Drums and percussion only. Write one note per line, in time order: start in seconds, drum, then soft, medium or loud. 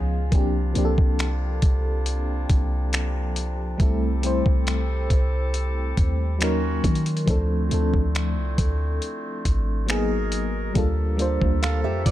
0.32 kick loud
0.32 closed hi-hat medium
0.75 closed hi-hat medium
0.98 kick medium
1.19 finger snap loud
1.19 closed hi-hat medium
1.62 kick loud
1.62 closed hi-hat medium
2.06 closed hi-hat medium
2.49 kick medium
2.49 closed hi-hat medium
2.93 finger snap loud
2.93 closed hi-hat medium
3.36 closed hi-hat medium
3.80 kick loud
3.80 closed hi-hat medium
4.23 closed hi-hat medium
4.46 kick medium
4.67 finger snap loud
4.67 closed hi-hat medium
5.10 kick medium
5.10 closed hi-hat medium
5.54 closed hi-hat medium
5.97 kick medium
5.97 closed hi-hat medium
6.41 finger snap loud
6.41 closed hi-hat medium
6.84 kick medium
6.84 closed hi-hat medium
6.95 closed hi-hat medium
7.06 closed hi-hat soft
7.17 closed hi-hat soft
7.28 kick loud
7.28 closed hi-hat medium
7.71 closed hi-hat medium
7.94 kick medium
8.15 finger snap loud
8.15 closed hi-hat medium
8.58 kick loud
8.58 closed hi-hat medium
9.02 closed hi-hat medium
9.45 kick medium
9.45 closed hi-hat medium
9.88 finger snap loud
9.88 closed hi-hat medium
10.32 closed hi-hat medium
10.75 kick loud
10.75 closed hi-hat medium
11.19 closed hi-hat medium
11.42 kick medium
11.63 finger snap loud
11.63 closed hi-hat medium
12.06 kick medium
12.06 closed hi-hat medium